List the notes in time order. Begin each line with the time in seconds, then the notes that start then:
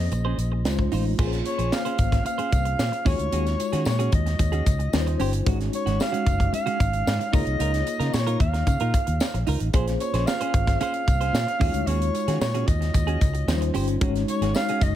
Already playing: A#3 C#4 F4 G#4 C5 D#5
0.11 A#1, muted clean electric guitar stroke, closed hi-hat, tambourine
0.25 C#4 G#4 C5
0.38 A#1, muted clean electric guitar stroke, closed hi-hat, tambourine
0.52 muted clean electric guitar stroke
0.65 C#2 G#3 C#4 D#4 F4 C5, snare, closed hi-hat, tambourine
0.79 muted clean electric guitar stroke, kick
0.92 A1 D#4 F4 C5, open hi-hat, tambourine
1.06 muted clean electric guitar stroke
1.18 A#1 A#3 C#4 F4 G#4 A#4 C5, kick, crash, tambourine
1.27 C5
1.33 muted clean electric guitar stroke, snare, closed hi-hat
1.45 C#5, muted clean electric guitar stroke, closed hi-hat, tambourine
1.58 A#1 C#4 G#4 C5, closed hi-hat
1.72 F5, snare, tambourine
1.85 C#4 G#4 C5, closed hi-hat
1.98 G#1, kick, closed hi-hat, tambourine
2.12 muted clean electric guitar stroke, kick, snare, closed hi-hat
2.25 F5, muted clean electric guitar stroke, closed hi-hat, tambourine
2.38 C#4 G#4 C5, closed hi-hat
2.51 C2, muted clean electric guitar stroke, kick, closed hi-hat, tambourine
2.65 muted clean electric guitar stroke, closed hi-hat
2.79 A#2, snare, tambourine
2.92 muted clean electric guitar stroke, closed hi-hat
3.05 D#2 G#3 C#4 D#4 F4 F#4 G#4 C#5, kick, open hi-hat, tambourine
3.19 D2, muted clean electric guitar stroke, closed hi-hat
3.32 D#2 C#4 F#4 G#4, closed hi-hat, tambourine
3.47 muted clean electric guitar stroke, snare, closed hi-hat
3.59 muted clean electric guitar stroke, closed hi-hat, tambourine
3.72 D#3 C#4 F#4 G#4, snare, closed hi-hat
3.85 A#2 C#5, snare, tambourine
3.99 C#4 F#4 G#4, closed hi-hat
4.12 D#2 D#5, muted clean electric guitar stroke, kick, closed hi-hat
4.26 muted clean electric guitar stroke, snare, closed hi-hat
4.39 D#2, muted clean electric guitar stroke, kick, closed hi-hat, tambourine
4.52 C#4 F#4 G#4, closed hi-hat
4.66 C#2, muted clean electric guitar stroke, kick, closed hi-hat, tambourine
4.79 muted clean electric guitar stroke, closed hi-hat
4.93 D#2 G3 C#4 D#4 F4 B4, snare, tambourine
5.01 C5
5.07 muted clean electric guitar stroke, closed hi-hat
5.19 G1 C#4 G4 C5, open hi-hat, tambourine
5.33 muted clean electric guitar stroke, closed hi-hat
5.46 G#1 G#3 C#4 D#4 F#4 C#5, kick, closed hi-hat, tambourine
5.60 muted clean electric guitar stroke, snare, closed hi-hat
5.73 C#5, muted clean electric guitar stroke, closed hi-hat, tambourine
5.86 G#1 G#3 C#4 F#4, snare, closed hi-hat
6.00 F5, snare, tambourine
6.12 G#3 C#4 F#4, closed hi-hat
6.26 F#1, muted clean electric guitar stroke, kick, closed hi-hat, tambourine
6.39 muted clean electric guitar stroke, kick, closed hi-hat
6.53 F5, muted clean electric guitar stroke, closed hi-hat, tambourine
6.66 G#3 C#4 F#4, closed hi-hat
6.80 G#1, kick, closed hi-hat, tambourine
6.93 muted clean electric guitar stroke, closed hi-hat
7.07 G#2, snare, tambourine
7.19 muted clean electric guitar stroke, closed hi-hat
7.33 C#2 A#3 D#4 E4 F4 G#4 A#4 C#5 D#5, kick, open hi-hat, tambourine
7.40 F4
7.46 C2, muted clean electric guitar stroke, closed hi-hat
7.59 C#2 D#4 F4 A#4, closed hi-hat, tambourine
7.73 muted clean electric guitar stroke, snare, closed hi-hat
7.86 muted clean electric guitar stroke, closed hi-hat, tambourine
7.99 C#3 D#4 F4 A#4, snare, closed hi-hat
8.13 A#2 C#5, muted clean electric guitar stroke, snare, tambourine
8.27 D#4 F4 A#4, closed hi-hat
8.40 D#2 F5, muted clean electric guitar stroke, kick, closed hi-hat
8.54 muted clean electric guitar stroke, snare, closed hi-hat
8.67 C#3, muted clean electric guitar stroke, kick, closed hi-hat, tambourine
8.80 A#2 D#4 F4 A#4, closed hi-hat
8.94 muted clean electric guitar stroke, kick, closed hi-hat, tambourine
9.07 D#2, muted clean electric guitar stroke, closed hi-hat
9.20 snare, tambourine
9.34 A#1, muted clean electric guitar stroke, closed hi-hat
9.47 C#2 D#4 F4 A#4, open hi-hat, tambourine
9.60 A1, muted clean electric guitar stroke, closed hi-hat
9.73 A#1 A#3 C#4 F4 G#4 C5, kick, closed hi-hat
9.87 muted clean electric guitar stroke, snare, closed hi-hat
10.00 C#5, muted clean electric guitar stroke, closed hi-hat, tambourine
10.13 A#1 C#4 G#4 C5, snare, closed hi-hat
10.27 F5, muted clean electric guitar stroke, snare, tambourine
10.41 C#4 G#4 C5, closed hi-hat
10.54 G#1, muted clean electric guitar stroke, kick, closed hi-hat
10.67 muted clean electric guitar stroke, kick, snare, closed hi-hat
10.80 C#4 G#4 C5 F5, closed hi-hat, tambourine
10.94 muted clean electric guitar stroke, closed hi-hat
11.07 C2, muted clean electric guitar stroke, kick, closed hi-hat, tambourine
11.21 C#4 G#4 C5, closed hi-hat
11.33 A#2, snare, tambourine
11.47 muted clean electric guitar stroke, closed hi-hat
11.59 D#2 G#3 C#4 D#4 F4 F#4 G#4 C#5, kick, open hi-hat, tambourine
11.74 D2, muted clean electric guitar stroke, closed hi-hat
11.87 D#2 C#4 F#4 G#4 C#5, closed hi-hat
12.01 muted clean electric guitar stroke, closed hi-hat
12.14 muted clean electric guitar stroke, closed hi-hat, tambourine
12.28 D#3 C#4 F#4 G#4, snare, closed hi-hat
12.41 A#2 C#5, snare, tambourine
12.54 C#4 F#4 G#4, closed hi-hat
12.67 D#2 D#5, muted clean electric guitar stroke, kick, closed hi-hat, tambourine
12.81 muted clean electric guitar stroke, snare, closed hi-hat
12.94 D#2, muted clean electric guitar stroke, kick, closed hi-hat, tambourine
13.07 C#4 F#4 G#4, closed hi-hat
13.21 C#2, muted clean electric guitar stroke, kick, closed hi-hat, tambourine
13.34 muted clean electric guitar stroke, closed hi-hat
13.48 D#2 F3 C#4 D#4 F4 C5, muted clean electric guitar stroke, snare, tambourine
13.54 G3
13.61 muted clean electric guitar stroke, closed hi-hat
13.74 G1 C#4 G4 C5, open hi-hat, tambourine
13.88 muted clean electric guitar stroke, closed hi-hat
14.00 G#1 G#3 C#4 D#4 F#4 G#4 C#5, kick, closed hi-hat
14.15 muted clean electric guitar stroke, snare, closed hi-hat
14.28 C#5, muted clean electric guitar stroke, closed hi-hat, tambourine
14.41 G#1 C#4 F#4 G#4, snare, closed hi-hat
14.55 F5, muted clean electric guitar stroke, snare, tambourine
14.69 C#4 F#4 G#4, closed hi-hat
14.81 F#1 D#5, muted clean electric guitar stroke, kick, closed hi-hat, tambourine